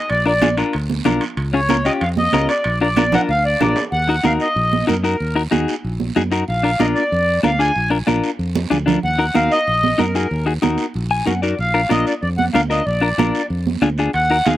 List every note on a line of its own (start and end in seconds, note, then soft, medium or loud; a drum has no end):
0.10 0.61 A#1 loud
0.10 0.25 D5 medium
0.10 high timbale medium
0.10 long guiro medium
0.26 0.32 D4 medium
0.26 0.32 F4 soft
0.26 0.32 A#4 medium
0.26 0.56 D5 medium
0.42 0.48 D4 medium
0.42 0.48 F4 medium
0.42 0.48 G#4 medium
0.42 high conga medium
0.42 high timbale medium
0.42 short guiro medium
0.57 0.74 D4 medium
0.57 0.75 F4 medium
0.57 0.75 A#4 medium
0.57 high timbale medium
0.57 short guiro medium
0.73 1.00 D2 medium
0.73 high timbale medium
0.73 long guiro medium
0.90 high conga medium
1.05 1.18 B1 medium
1.05 1.22 D4 medium
1.05 1.23 F4 medium
1.05 1.23 A#4 medium
1.05 high conga medium
1.05 low conga medium
1.05 high timbale medium
1.05 short guiro medium
1.21 high timbale medium
1.21 short guiro medium
1.37 1.88 C#2 loud
1.37 high timbale medium
1.37 long guiro medium
1.53 1.59 C#4 medium
1.53 1.59 F4 medium
1.53 1.59 G#4 medium
1.53 1.86 C#5 medium
1.69 1.75 C#4 medium
1.69 1.75 F4 medium
1.69 1.75 A#4 medium
1.69 high conga medium
1.69 high timbale medium
1.69 short guiro medium
1.85 2.02 C#4 medium
1.85 2.02 F4 medium
1.85 2.03 G4 medium
1.85 1.92 D#5 medium
1.85 high timbale medium
1.85 short guiro medium
2.01 2.27 F2 medium
2.01 2.09 F5 medium
2.01 high timbale medium
2.01 long guiro medium
2.17 2.47 D#5 medium
2.17 high conga medium
2.33 2.46 C#2 loud
2.33 2.50 C#4 medium
2.33 2.50 F4 medium
2.33 2.50 A#4 medium
2.33 high conga medium
2.33 high timbale medium
2.33 low timbale medium
2.33 short guiro medium
2.49 2.79 D5 medium
2.49 high timbale medium
2.49 short guiro medium
2.64 3.16 A#1 loud
2.64 high timbale medium
2.64 long guiro medium
2.81 2.87 D4 medium
2.81 2.87 F4 medium
2.81 2.87 A#4 medium
2.81 3.15 D5 medium
2.97 3.03 D4 medium
2.97 3.03 F4 medium
2.97 3.03 A#4 medium
2.97 high conga medium
2.97 high timbale medium
2.97 short guiro medium
3.12 3.30 D4 medium
3.12 3.30 F4 medium
3.12 3.31 A#4 medium
3.12 3.21 F#5 loud
3.12 low conga medium
3.12 high timbale medium
3.12 short guiro medium
3.29 3.54 D2 medium
3.29 3.44 F5 loud
3.29 long guiro medium
3.45 3.60 D5 medium
3.60 3.74 A#1 medium
3.60 3.78 D4 medium
3.60 3.78 F4 medium
3.60 3.78 A#4 medium
3.60 3.84 D5 medium
3.60 high conga medium
3.60 low conga medium
3.60 low timbale medium
3.60 short guiro medium
3.76 low timbale medium
3.76 short guiro medium
3.92 4.18 D#2 medium
3.92 4.25 F#5 loud
3.92 long guiro medium
4.09 4.14 D#4 medium
4.09 4.15 F#4 medium
4.09 4.15 A#4 medium
4.24 4.37 D#2 medium
4.24 4.47 D#4 medium
4.24 4.47 F#4 medium
4.24 4.47 A#4 medium
4.24 4.33 F5 medium
4.24 high conga medium
4.24 short guiro medium
4.40 4.85 D#5 medium
4.40 short guiro medium
4.56 4.82 A#1 loud
4.56 long guiro medium
4.73 high conga medium
4.87 5.14 F#2 medium
4.87 4.93 D#4 medium
4.87 4.94 F#4 medium
4.87 4.94 A#4 medium
4.87 4.97 A#4 medium
4.87 high conga medium
4.87 short guiro medium
5.04 5.15 D#4 medium
5.04 5.16 F#4 medium
5.04 5.16 A#4 medium
5.04 5.35 A#4 medium
5.04 short guiro medium
5.20 5.46 D#2 medium
5.20 long guiro medium
5.35 5.42 D#4 medium
5.35 5.42 F#4 medium
5.35 5.42 A#4 medium
5.51 5.65 D#2 medium
5.51 5.74 D#4 medium
5.51 5.74 F#4 medium
5.51 5.75 G#4 medium
5.51 high conga medium
5.51 short guiro medium
5.68 short guiro medium
5.84 6.10 A#1 medium
5.84 long guiro medium
6.00 high conga medium
6.16 6.42 F#2 medium
6.16 6.22 D#4 medium
6.16 6.22 F#4 medium
6.16 6.22 G#4 medium
6.16 high conga medium
6.16 short guiro medium
6.32 6.43 D#4 medium
6.32 6.43 F#4 medium
6.32 6.43 A#4 medium
6.32 short guiro medium
6.48 6.74 A#1 loud
6.48 6.81 F5 medium
6.48 long guiro medium
6.63 6.69 D4 medium
6.63 6.70 F4 medium
6.63 6.70 A#4 medium
6.80 6.93 A#1 medium
6.80 7.02 D4 medium
6.80 7.02 F4 medium
6.80 7.03 A#4 medium
6.80 6.87 D#5 medium
6.80 high conga medium
6.80 short guiro medium
6.95 7.40 D5 medium
6.95 short guiro medium
7.12 7.38 F2 loud
7.12 long guiro medium
7.43 7.70 D2 medium
7.43 7.49 D4 medium
7.43 7.49 F4 medium
7.43 7.50 A#4 medium
7.43 7.61 F5 medium
7.43 high conga medium
7.43 short guiro medium
7.59 7.71 D4 medium
7.59 7.71 F4 soft
7.59 7.71 G#4 medium
7.59 7.90 G#5 medium
7.59 short guiro medium
7.76 8.02 A#1 medium
7.76 long guiro medium
7.90 7.97 D4 medium
7.90 7.97 F4 medium
7.90 7.97 A#4 medium
8.07 8.20 A#1 medium
8.07 8.30 D4 medium
8.07 8.30 F4 medium
8.07 8.30 A#4 medium
8.07 high conga medium
8.07 short guiro medium
8.24 short guiro medium
8.39 8.65 F2 medium
8.39 long guiro medium
8.55 high conga medium
8.70 8.97 D2 medium
8.70 8.77 D4 medium
8.70 8.77 F4 medium
8.70 8.77 G#4 medium
8.70 low conga medium
8.70 short guiro medium
8.86 8.98 D4 medium
8.86 8.98 F4 medium
8.86 8.98 A#4 medium
8.86 low conga loud
8.86 short guiro medium
9.03 9.29 D#2 medium
9.03 9.37 F#5 loud
9.03 long guiro medium
9.18 9.25 D#4 medium
9.18 9.25 F#4 soft
9.18 9.25 A#4 medium
9.34 9.48 D#2 medium
9.34 9.57 D#4 medium
9.34 9.57 F#4 medium
9.34 9.58 A#4 medium
9.34 9.52 F5 medium
9.34 high conga medium
9.34 short guiro medium
9.52 10.01 D#5 loud
9.52 short guiro medium
9.67 9.93 A#1 medium
9.67 long guiro medium
9.84 high conga medium
9.98 10.25 F#2 medium
9.98 10.04 D#4 medium
9.98 10.05 F#4 medium
9.98 10.05 A#4 medium
9.98 10.15 A#4 medium
9.98 high conga medium
9.98 short guiro medium
10.15 10.26 D#4 medium
10.15 10.26 F#4 medium
10.15 10.27 G#4 medium
10.15 10.45 A#4 medium
10.15 short guiro medium
10.31 10.57 D#2 loud
10.31 long guiro medium
10.46 10.52 D#4 medium
10.46 10.52 F#4 medium
10.46 10.53 G#4 medium
10.62 10.76 D#2 medium
10.62 10.85 D#4 medium
10.62 10.85 F#4 medium
10.62 10.85 A#4 medium
10.62 high conga medium
10.62 short guiro medium
10.78 short guiro medium
10.94 11.21 A#1 loud
10.94 long guiro medium
11.11 11.26 G#5 medium
11.26 11.53 F#2 medium
11.26 11.32 D#4 medium
11.26 11.32 F#4 medium
11.26 11.33 A#4 medium
11.26 11.42 F#5 medium
11.26 high conga medium
11.26 short guiro medium
11.42 11.54 D#4 medium
11.42 11.54 F#4 medium
11.42 11.54 A#4 medium
11.42 11.58 D5 medium
11.42 short guiro medium
11.59 11.84 A#1 medium
11.59 11.92 F5 medium
11.59 long guiro medium
11.74 11.80 D4 medium
11.74 11.80 F4 soft
11.74 11.80 A#4 medium
11.89 12.04 A#1 medium
11.89 12.12 D4 medium
11.89 12.13 F4 medium
11.89 12.13 A#4 medium
11.89 12.06 D#5 medium
11.89 high conga medium
11.89 short guiro medium
12.07 12.14 D5 medium
12.07 short guiro medium
12.22 12.48 F2 loud
12.22 12.29 D5 medium
12.22 long guiro medium
12.38 12.45 F#5 loud
12.38 high conga medium
12.54 12.80 D2 medium
12.54 12.60 D4 medium
12.54 12.60 F4 medium
12.54 12.61 A#4 medium
12.54 12.61 F5 medium
12.54 high conga medium
12.54 short guiro medium
12.70 12.82 D4 soft
12.70 12.81 F4 soft
12.70 12.82 A#4 medium
12.70 12.85 D#5 medium
12.70 short guiro medium
12.86 13.12 A#1 medium
12.86 13.46 D5 medium
12.86 long guiro medium
13.01 13.08 D4 medium
13.01 13.08 F4 medium
13.01 13.08 A#4 medium
13.18 13.31 A#1 medium
13.18 13.41 D4 medium
13.18 13.41 F4 medium
13.18 13.41 A#4 medium
13.18 high conga medium
13.18 short guiro medium
13.35 short guiro medium
13.50 13.76 F2 loud
13.50 long guiro medium
13.67 high conga medium
13.82 14.07 D2 medium
13.82 13.88 D4 medium
13.82 13.88 F4 medium
13.82 13.88 G#4 medium
13.82 high conga medium
13.82 short guiro medium
13.98 14.10 D4 medium
13.98 14.10 F4 medium
13.98 14.10 G#4 medium
13.98 short guiro medium
14.13 14.40 D#2 medium
14.13 14.47 F#5 loud
14.13 high timbale medium
14.13 long guiro medium
14.30 14.36 D#4 medium
14.30 14.36 F#4 medium
14.30 14.36 A#4 medium
14.45 14.57 D#2 medium
14.45 14.57 D#4 medium
14.45 14.57 F#4 medium
14.45 14.57 G#4 medium
14.45 14.53 F5 loud
14.45 high conga medium
14.45 high timbale medium
14.45 short guiro medium